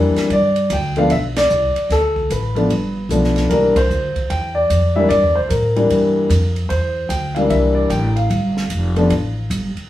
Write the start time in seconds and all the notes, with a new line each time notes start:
Already playing: F2 E3 G3 A#3 D4
0.16 muted upright bass stroke, snare, ride
0.30 G2 D5, ride
0.56 ride
0.70 D2 G5, hi-hat pedal, ride
0.96 F3 A3 B3 D4 F5, ride
1.10 B1 E5, ride
1.36 D5, snare, ride
1.50 C2, hi-hat pedal
1.76 ride
1.90 D2 A4, snare, ride
2.16 kick
2.30 A1 B4, hi-hat pedal, ride
2.55 F3 A3 B3 D4, ride
2.69 G1, ride
3.09 B1 F3 A3 B3 D4, hi-hat pedal, ride
3.24 snare
3.36 snare, ride
3.49 C2 E3 G3 A#3 D4 A#4, ride
3.76 C5, muted upright bass stroke, kick, ride
3.90 D2, hi-hat pedal
4.16 muted upright bass stroke, kick, ride
4.30 E2 G5, ride
4.55 D5
4.70 F2, hi-hat pedal, ride
4.96 E3 G3 A#3 D4 E5
5.09 G2 D5, ride
5.23 E2
5.35 C2 C5
5.49 A2 A#4, hi-hat pedal, ride
5.76 E3 G3 A#3 D4, ride
5.90 G2, ride
6.29 F2, hi-hat pedal, ride
6.56 ride
6.69 E2 C5, ride
7.09 D2 G5, hi-hat pedal, ride
7.35 E3 G3 A#3 D4 F5, ride
7.50 C2 E5, ride
7.75 D5
7.90 A1 G5, hi-hat pedal, ride
8.16 F5, ride
8.30 G1, ride
8.57 snare
8.70 F1, hi-hat pedal, ride
8.96 F3 A3 B3 D4, ride
9.10 A1, ride
9.50 G1, hi-hat pedal, ride
9.76 muted upright bass stroke, ride